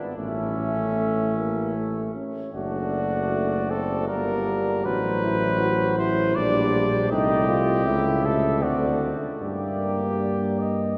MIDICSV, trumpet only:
0, 0, Header, 1, 2, 480
1, 0, Start_track
1, 0, Key_signature, -2, "minor"
1, 0, Tempo, 782269
1, 106, Time_signature, 3, 2, 24, 8
1, 2506, Tempo, 755668
1, 5386, Tempo, 790514
1, 6819, End_track
2, 0, Start_track
2, 0, Title_t, "Trumpet"
2, 0, Program_c, 0, 56
2, 110, Note_on_c, 0, 61, 52
2, 1295, Note_off_c, 0, 61, 0
2, 1556, Note_on_c, 0, 66, 55
2, 2273, Note_on_c, 0, 69, 53
2, 2283, Note_off_c, 0, 66, 0
2, 2501, Note_off_c, 0, 69, 0
2, 2505, Note_on_c, 0, 70, 61
2, 2996, Note_on_c, 0, 71, 70
2, 3005, Note_off_c, 0, 70, 0
2, 3710, Note_off_c, 0, 71, 0
2, 3714, Note_on_c, 0, 72, 73
2, 3949, Note_on_c, 0, 74, 74
2, 3958, Note_off_c, 0, 72, 0
2, 4424, Note_off_c, 0, 74, 0
2, 4435, Note_on_c, 0, 67, 76
2, 5155, Note_on_c, 0, 69, 59
2, 5164, Note_off_c, 0, 67, 0
2, 5391, Note_on_c, 0, 66, 58
2, 5400, Note_off_c, 0, 69, 0
2, 5697, Note_off_c, 0, 66, 0
2, 5868, Note_on_c, 0, 67, 50
2, 6803, Note_off_c, 0, 67, 0
2, 6819, End_track
0, 0, End_of_file